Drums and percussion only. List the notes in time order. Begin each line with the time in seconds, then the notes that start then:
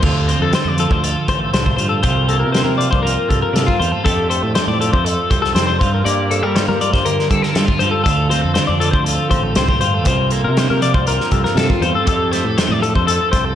0.02 kick, crash
0.29 closed hi-hat
0.53 snare, closed hi-hat
0.78 closed hi-hat
0.91 kick
1.04 closed hi-hat
1.28 kick, closed hi-hat
1.54 snare, closed hi-hat
1.66 kick
1.78 closed hi-hat
2.03 kick, closed hi-hat
2.29 closed hi-hat
2.54 snare, closed hi-hat
2.81 closed hi-hat
2.93 kick
3.07 closed hi-hat
3.31 kick, closed hi-hat
3.56 snare, closed hi-hat
3.68 kick
3.82 closed hi-hat
4.06 kick, closed hi-hat
4.31 closed hi-hat
4.55 snare, closed hi-hat
4.82 closed hi-hat
4.93 kick
5.06 closed hi-hat
5.31 kick, closed hi-hat
5.44 snare
5.56 snare, closed hi-hat
5.81 kick, closed hi-hat
6.06 closed hi-hat
6.31 closed hi-hat
6.56 snare, closed hi-hat
6.81 closed hi-hat
6.94 kick, snare
7.06 closed hi-hat
7.19 snare
7.31 kick, closed hi-hat
7.43 snare
7.55 snare, closed hi-hat
7.68 kick
7.80 closed hi-hat
8.06 kick, closed hi-hat
8.31 snare, closed hi-hat
8.55 snare, closed hi-hat
8.81 closed hi-hat
8.93 kick
9.06 closed hi-hat
9.31 kick, closed hi-hat
9.55 snare, closed hi-hat
9.69 kick
9.81 closed hi-hat
10.05 kick, closed hi-hat
10.30 closed hi-hat
10.57 snare, closed hi-hat
10.82 closed hi-hat
10.94 kick
11.07 closed hi-hat
11.20 snare
11.31 kick, closed hi-hat
11.45 snare
11.57 snare, closed hi-hat
11.70 kick
11.82 closed hi-hat
12.07 kick, closed hi-hat
12.33 snare, closed hi-hat
12.58 snare, closed hi-hat
12.83 closed hi-hat
12.95 kick
13.08 closed hi-hat
13.33 kick, closed hi-hat